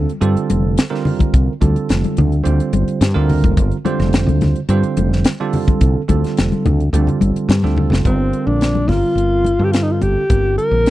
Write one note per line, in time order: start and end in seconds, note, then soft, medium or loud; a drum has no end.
0.00 0.11 D3 medium
0.00 0.11 G3 medium
0.00 0.11 C4 medium
0.00 0.11 F4 medium
0.00 0.11 A4 loud
0.09 closed hi-hat soft
0.21 0.35 G2 medium
0.21 0.82 D3 medium
0.21 0.83 G3 medium
0.21 0.83 C4 medium
0.21 0.83 F4 medium
0.21 0.82 A4 medium
0.21 closed hi-hat medium
0.36 muted fretless electric bass stroke soft
0.36 closed hi-hat soft
0.50 0.76 F1 medium
0.50 closed hi-hat medium
0.50 high conga medium
0.78 snare loud
0.78 closed hi-hat medium
0.90 1.52 D3 medium
0.90 1.52 G3 medium
0.90 1.52 C4 medium
0.90 1.52 F4 medium
0.90 1.52 A#4 medium
0.95 snare soft
1.05 open hi-hat medium
1.05 low conga medium
1.19 kick medium
1.19 closed hi-hat soft
1.19 high conga medium
1.34 1.47 C2 medium
1.34 kick loud
1.34 closed hi-hat medium
1.61 1.75 D2 medium
1.61 2.35 D3 medium
1.61 2.35 G3 medium
1.61 2.35 C4 medium
1.61 2.35 F4 medium
1.61 2.35 A4 medium
1.61 kick medium
1.61 closed hi-hat medium
1.61 high conga medium
1.76 muted fretless electric bass stroke soft
1.76 closed hi-hat soft
1.89 2.03 F1 medium
1.89 snare medium
1.89 closed hi-hat medium
2.04 closed hi-hat soft
2.04 high conga medium
2.17 2.44 D2 medium
2.17 closed hi-hat medium
2.17 high conga medium
2.17 low conga medium
2.32 closed hi-hat soft
2.44 2.59 D2 medium
2.44 3.06 D3 medium
2.44 3.06 G3 medium
2.44 3.06 C4 medium
2.44 3.06 F4 medium
2.44 3.06 C5 medium
2.44 closed hi-hat medium
2.60 closed hi-hat soft
2.73 2.87 G1 medium
2.73 closed hi-hat medium
2.73 high conga medium
2.88 muted fretless electric bass stroke soft
2.88 closed hi-hat soft
3.01 3.15 G2 medium
3.01 snare loud
3.01 closed hi-hat medium
3.14 3.42 D2 medium
3.14 3.76 D3 medium
3.14 3.76 G3 medium
3.14 3.76 C4 medium
3.14 3.76 F4 medium
3.14 3.76 A#4 loud
3.29 open hi-hat medium
3.29 low conga medium
3.44 3.57 F1 medium
3.44 kick medium
3.44 closed hi-hat soft
3.44 high conga medium
3.57 3.71 G1 medium
3.57 kick loud
3.57 closed hi-hat medium
3.71 closed hi-hat soft
3.85 4.59 D3 medium
3.85 4.58 G3 medium
3.85 4.59 C4 medium
3.85 4.59 F4 medium
3.85 4.59 C5 medium
3.85 muted fretless electric bass stroke soft
3.85 closed hi-hat medium
3.85 high conga medium
4.00 4.28 F1 medium
4.00 snare soft
4.00 closed hi-hat soft
4.13 snare loud
4.13 closed hi-hat medium
4.26 4.53 D2 medium
4.26 closed hi-hat soft
4.26 high conga medium
4.41 snare soft
4.41 closed hi-hat medium
4.41 high conga medium
4.41 low conga medium
4.55 closed hi-hat soft
4.69 4.82 G2 medium
4.69 5.30 D3 medium
4.69 5.31 G3 medium
4.69 5.31 C4 medium
4.69 5.31 F4 medium
4.69 5.31 C5 medium
4.69 closed hi-hat medium
4.82 muted fretless electric bass stroke soft
4.82 closed hi-hat soft
4.97 5.23 F1 medium
4.97 closed hi-hat medium
4.97 high conga medium
5.13 snare soft
5.24 snare loud
5.24 closed hi-hat medium
5.40 6.01 D3 medium
5.40 6.01 G3 medium
5.40 6.01 C4 medium
5.40 6.01 F4 medium
5.40 6.01 A4 loud
5.53 open hi-hat medium
5.53 low conga medium
5.68 kick medium
5.68 closed hi-hat soft
5.68 high conga medium
5.81 5.95 C2 medium
5.81 kick loud
5.81 closed hi-hat medium
6.08 6.23 D2 medium
6.08 6.82 D3 medium
6.08 6.82 G3 medium
6.08 6.82 C4 medium
6.08 6.82 F4 medium
6.08 6.82 A4 medium
6.08 kick medium
6.08 closed hi-hat medium
6.08 high conga medium
6.24 muted fretless electric bass stroke soft
6.24 snare soft
6.24 closed hi-hat soft
6.37 6.52 F1 medium
6.37 snare loud
6.37 closed hi-hat medium
6.52 closed hi-hat soft
6.52 high conga medium
6.66 6.92 D2 medium
6.66 closed hi-hat medium
6.66 high conga medium
6.66 low conga medium
6.80 closed hi-hat soft
6.93 7.07 D2 medium
6.93 7.55 D3 medium
6.93 7.55 G3 medium
6.93 7.55 C4 medium
6.93 7.55 F4 medium
6.93 7.54 A4 medium
6.93 closed hi-hat medium
7.07 closed hi-hat soft
7.07 low conga medium
7.21 7.35 G1 medium
7.21 closed hi-hat medium
7.21 high conga medium
7.36 muted fretless electric bass stroke soft
7.36 closed hi-hat soft
7.49 7.63 G2 medium
7.49 snare loud
7.49 closed hi-hat medium
7.49 high conga medium
7.63 7.90 D2 medium
7.63 8.05 D3 medium
7.63 8.04 G3 medium
7.63 8.04 C4 medium
7.63 8.04 F4 medium
7.63 8.05 A4 medium
7.63 snare soft
7.63 high conga medium
7.77 high tom medium
7.77 low conga medium
7.90 8.05 F1 medium
7.90 snare medium
7.90 low conga medium
8.05 8.32 G1 medium
8.05 8.79 D3 medium
8.05 8.79 G3 medium
8.05 8.79 C4 medium
8.05 8.48 C4 medium
8.05 8.79 F4 medium
8.05 8.79 A#4 medium
8.05 kick medium
8.05 closed hi-hat medium
8.33 closed hi-hat soft
8.47 8.86 A#1 medium
8.47 8.90 D4 medium
8.61 snare medium
8.61 closed hi-hat medium
8.75 high conga medium
8.88 9.02 G1 medium
8.88 9.51 D3 medium
8.88 9.51 G3 medium
8.88 9.51 C4 medium
8.88 9.66 F4 medium
8.88 9.51 F4 medium
8.88 9.52 A#4 medium
8.88 snare soft
8.88 open hi-hat medium
8.88 low conga medium
9.15 9.57 G1 medium
9.15 closed hi-hat medium
9.45 closed hi-hat medium
9.45 high conga medium
9.59 9.99 G2 medium
9.59 10.22 D3 medium
9.59 10.22 G3 medium
9.59 10.22 C4 medium
9.59 10.22 F4 medium
9.59 10.22 A4 medium
9.64 9.73 G4 medium
9.72 9.84 F4 medium
9.72 snare medium
9.72 closed hi-hat medium
9.82 9.93 D#4 medium
9.91 10.03 F4 medium
10.01 10.15 G1 medium
10.01 10.57 G4 medium
10.01 closed hi-hat medium
10.01 low conga medium
10.30 10.57 G1 medium
10.30 10.90 D3 medium
10.30 10.90 G3 medium
10.30 10.90 C4 soft
10.30 10.90 F4 medium
10.30 10.90 A#4 medium
10.30 kick loud
10.30 closed hi-hat medium
10.58 10.90 A#4 medium
10.58 closed hi-hat soft
10.71 10.90 A#1 medium
10.86 closed hi-hat medium